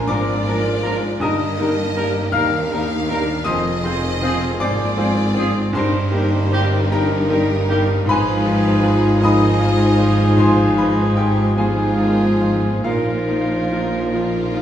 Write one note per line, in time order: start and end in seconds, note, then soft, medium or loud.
0.00 1.24 A#2 medium
0.00 0.08 A#3 medium
0.00 0.09 D4 medium
0.00 0.09 A#4 medium
0.00 1.24 F5 medium
0.00 1.24 G#5 medium
0.00 0.09 A#5 loud
0.00 1.24 C6 medium
0.06 1.21 G#1 medium
0.06 1.21 G#2 medium
0.06 1.19 F3 medium
0.06 0.24 F3 medium
0.06 0.42 A#3 medium
0.06 0.46 C4 medium
0.06 0.25 D4 medium
0.06 0.42 D4 medium
0.06 1.21 F4 medium
0.06 0.42 A#4 medium
0.06 0.25 A#4 medium
0.06 1.20 D5 loud
0.06 1.18 D5 medium
0.06 1.18 A#5 medium
0.06 0.18 A#5 medium
0.06 1.17 D6 loud
0.44 0.82 A#3 medium
0.44 0.80 A#3 medium
0.44 0.62 D4 medium
0.44 0.81 D4 medium
0.44 0.63 A#4 medium
0.44 0.81 A#4 medium
0.48 0.64 F3 medium
0.48 0.56 A#5 medium
0.82 1.00 F3 medium
0.82 1.21 G#3 medium
0.82 0.97 A#3 medium
0.82 1.17 A#3 medium
0.82 0.96 D4 medium
0.82 0.99 D4 medium
0.82 1.18 D4 medium
0.82 0.96 A#4 medium
0.82 1.00 A#4 medium
0.82 1.18 A#4 medium
0.82 0.93 A#5 medium
1.20 2.32 G1 medium
1.20 1.57 G2 medium
1.20 2.32 G2 medium
1.20 5.76 D#3 medium
1.20 1.38 G3 medium
1.20 2.34 A#3 medium
1.20 1.38 D#4 medium
1.20 3.44 G4 medium
1.20 1.37 A#4 medium
1.20 2.34 D#5 loud
1.20 2.32 D#5 medium
1.20 2.31 A#5 medium
1.20 1.31 A#5 medium
1.20 2.31 D#6 loud
1.58 1.76 G3 medium
1.58 1.92 A#3 medium
1.58 1.92 D#4 medium
1.58 1.75 D#4 medium
1.58 1.74 A#4 medium
1.58 1.93 A#4 medium
1.58 1.69 A#5 medium
1.94 2.14 G3 medium
1.94 2.29 A#3 medium
1.94 2.11 A#3 medium
1.94 2.30 D#4 medium
1.94 2.10 D#4 medium
1.94 2.14 D#4 medium
1.94 2.30 A#4 medium
1.94 2.10 A#4 medium
1.94 2.12 A#4 medium
1.99 2.07 A#5 medium
2.32 3.47 D#2 medium
2.32 2.51 G3 medium
2.32 2.67 A#3 medium
2.32 2.71 C4 medium
2.32 2.67 D#4 medium
2.32 2.51 D#4 medium
2.32 2.67 A#4 medium
2.32 2.49 A#4 medium
2.32 3.43 F5 medium
2.32 3.45 F5 loud
2.32 3.42 F6 loud
2.37 2.45 A#5 medium
2.71 2.87 G3 medium
2.71 3.06 A#3 medium
2.71 3.10 A#3 medium
2.71 3.06 D#4 medium
2.71 2.89 D#4 medium
2.71 3.06 A#4 medium
2.71 2.88 A#4 medium
2.71 2.82 A#5 medium
3.09 3.27 G3 medium
3.09 3.43 A#3 medium
3.09 3.24 A#3 medium
3.09 3.47 D4 medium
3.09 3.43 D#4 medium
3.09 3.23 D#4 medium
3.09 3.27 D#4 medium
3.09 3.25 A#4 medium
3.09 3.43 A#4 medium
3.09 3.23 A#4 medium
3.13 3.21 A#5 medium
3.44 4.62 F1 loud
3.44 3.84 F2 medium
3.44 4.62 F2 medium
3.44 4.62 C4 medium
3.44 3.85 G#4 medium
3.44 3.62 C5 medium
3.44 4.58 D#5 loud
3.44 4.62 D#5 loud
3.44 4.57 C6 medium
3.44 4.57 D#6 loud
3.49 3.65 F3 medium
3.49 3.66 C4 medium
3.49 3.57 G#5 medium
3.84 4.00 F3 medium
3.84 4.19 C4 medium
3.84 4.23 D#4 medium
3.84 4.20 F4 medium
3.84 4.20 G#4 medium
3.84 4.00 C5 medium
3.84 3.96 G#5 medium
3.89 4.05 C4 medium
4.22 4.38 F3 medium
4.22 4.57 C4 medium
4.22 4.36 C4 medium
4.22 4.58 F4 medium
4.22 4.36 F4 medium
4.22 4.58 F4 medium
4.22 4.58 G#4 medium
4.22 4.37 G#4 medium
4.22 4.40 C5 medium
4.26 4.42 C4 medium
4.26 4.36 G#5 medium
4.60 5.76 G#1 medium
4.60 5.76 G#2 medium
4.60 4.76 F3 medium
4.60 5.00 A#3 medium
4.60 4.95 C4 medium
4.60 5.72 F4 medium
4.60 4.95 F4 medium
4.60 4.95 G#4 medium
4.60 4.78 C5 medium
4.60 5.75 D5 loud
4.60 5.72 D5 loud
4.60 5.71 D6 loud
4.64 4.81 C4 medium
4.64 4.72 G#5 medium
4.97 5.14 F3 medium
4.97 5.38 G#3 medium
4.97 5.33 C4 medium
4.97 5.33 F4 medium
4.97 5.33 G#4 medium
4.97 5.16 C5 medium
5.02 5.19 C4 medium
5.02 5.11 G#5 medium
5.34 5.53 F3 medium
5.34 5.70 C4 medium
5.34 5.49 C4 medium
5.34 5.70 F4 medium
5.34 5.49 F4 medium
5.34 5.70 G#4 medium
5.34 5.51 G#4 medium
5.38 5.76 C4 medium
5.38 5.56 C4 medium
5.38 5.55 C5 medium
5.38 5.48 G#5 medium
5.72 8.04 G1 medium
5.72 6.12 G2 loud
5.72 8.04 G2 medium
5.72 5.92 G3 medium
5.72 8.06 D#4 medium
5.72 6.89 C5 loud
5.72 6.88 C6 loud
5.76 6.90 G3 medium
5.76 6.14 D#4 medium
5.76 5.93 D#4 medium
5.76 5.93 A#4 medium
5.76 6.89 C5 medium
5.76 5.85 G5 medium
6.11 6.30 G3 medium
6.11 6.48 A#3 medium
6.11 6.52 A#3 medium
6.11 6.48 D#4 medium
6.11 6.30 D#4 medium
6.11 6.48 G4 medium
6.11 6.30 A#4 medium
6.11 6.23 G5 medium
6.51 6.70 G3 medium
6.51 6.88 A#3 medium
6.51 6.67 A#3 medium
6.51 6.93 D4 medium
6.51 6.87 D#4 medium
6.51 6.69 D#4 medium
6.51 6.67 D#4 medium
6.51 6.88 G4 medium
6.51 6.66 G4 medium
6.51 6.69 A#4 medium
6.55 6.64 G5 medium
6.89 7.31 F3 medium
6.89 7.07 G3 medium
6.89 7.26 A#3 medium
6.89 7.27 D#4 medium
6.89 11.58 D#4 medium
6.89 7.09 D#4 medium
6.89 7.27 G4 medium
6.89 8.07 A#4 loud
6.89 7.09 A#4 medium
6.89 8.05 G5 medium
6.89 8.04 A#5 loud
6.94 8.05 A#4 medium
6.94 7.02 G5 medium
7.29 7.70 D#3 medium
7.29 7.48 G3 medium
7.29 7.65 A#3 medium
7.29 7.65 D#4 medium
7.29 7.47 D#4 medium
7.29 7.66 G4 medium
7.29 7.48 A#4 medium
7.29 7.41 G5 medium
7.68 7.86 G3 medium
7.68 8.08 G3 medium
7.68 8.03 A#3 medium
7.68 7.84 A#3 medium
7.68 8.04 D#4 medium
7.68 7.86 D#4 medium
7.68 7.84 D#4 medium
7.68 8.04 G4 medium
7.68 7.83 G4 medium
7.68 7.87 A#4 medium
7.68 7.79 G5 medium
8.06 12.80 G#1 loud
8.06 8.44 G#2 medium
8.06 12.79 G#2 medium
8.06 9.17 F3 medium
8.06 9.19 F3 medium
8.06 9.18 D#4 medium
8.06 8.44 F4 medium
8.06 9.18 F4 loud
8.06 9.18 G#4 medium
8.06 9.19 B4 loud
8.06 9.18 G#5 medium
8.06 9.19 B5 loud
8.10 9.19 B4 loud
8.10 9.19 G#5 loud
8.43 8.79 F3 medium
8.43 8.79 D#4 medium
8.43 8.80 F4 medium
8.43 8.82 G4 medium
8.82 9.17 F3 medium
8.82 9.18 D#4 medium
8.82 9.18 F4 medium
8.82 9.18 G#4 medium
9.19 9.60 D#3 medium
9.19 9.56 F3 medium
9.19 11.53 F3 medium
9.19 11.54 F3 medium
9.19 9.56 D#4 medium
9.19 11.53 D#4 medium
9.19 11.54 D#4 medium
9.19 9.56 F4 medium
9.19 11.53 F4 medium
9.19 10.34 G#4 medium
9.19 11.53 G#4 medium
9.19 10.37 D#5 loud
9.19 11.53 G#5 medium
9.24 10.35 D#5 medium
9.24 10.36 B5 medium
9.24 10.35 D#6 loud
9.59 9.94 F3 medium
9.59 9.98 F3 medium
9.59 9.95 D#4 medium
9.59 9.95 F4 medium
9.97 10.33 F3 medium
9.97 10.37 G3 medium
9.97 10.34 D#4 medium
9.97 10.34 F4 medium
10.36 10.76 G#2 medium
10.36 11.54 G#3 medium
10.36 11.57 D#4 medium
10.36 10.77 C5 loud
10.36 10.75 C5 medium
10.36 10.75 G#5 medium
10.36 10.75 C6 loud
10.75 11.13 F3 medium
10.75 11.13 D#4 medium
10.75 11.13 F4 medium
10.75 11.16 B4 medium
10.75 11.15 B5 medium
10.79 11.15 B4 medium
11.15 11.54 F3 medium
11.15 11.54 D#4 medium
11.15 11.54 F4 medium
11.15 11.57 G4 medium
11.15 11.56 G4 medium
11.15 11.55 G5 medium
11.55 11.98 F3 medium
11.55 12.81 F3 medium
11.55 11.95 F3 medium
11.55 12.81 F3 medium
11.55 12.81 B3 medium
11.55 12.80 D#4 medium
11.55 11.96 D#4 medium
11.55 12.82 D#4 medium
11.55 12.83 F4 medium
11.55 12.81 F4 medium
11.55 11.95 F4 medium
11.55 12.81 G#4 medium
11.55 12.82 G#4 medium
11.55 12.81 G#4 medium
11.55 12.81 F5 medium
11.55 12.81 G#5 medium
11.55 12.80 G#5 medium
11.98 12.41 D#3 medium
11.98 12.37 F3 medium
11.98 12.37 D#4 medium
11.98 12.37 F4 medium
12.41 12.82 F3 medium
12.41 12.80 F3 medium
12.41 12.81 D#4 medium
12.41 12.80 F4 medium
12.83 14.62 A#1 medium
12.83 14.62 A#2 medium
12.83 13.26 A#2 medium
12.83 14.62 F3 medium
12.83 14.62 A#3 medium
12.83 14.62 D#4 medium
12.83 14.62 F4 medium
12.83 14.01 F4 medium
12.83 14.62 F4 medium
12.83 13.27 F4 medium
12.83 14.62 A#4 medium
12.83 14.62 F5 medium
13.27 13.66 F3 medium
13.27 13.66 D#4 medium
13.27 13.67 F4 medium
13.72 14.09 F3 medium
13.72 14.09 D#4 medium
13.72 14.09 F4 medium
14.11 14.50 F3 medium
14.11 14.51 D#4 medium
14.11 14.62 F4 medium
14.11 14.51 F4 medium
14.54 14.62 F3 medium
14.54 14.62 D#4 medium
14.54 14.62 F4 medium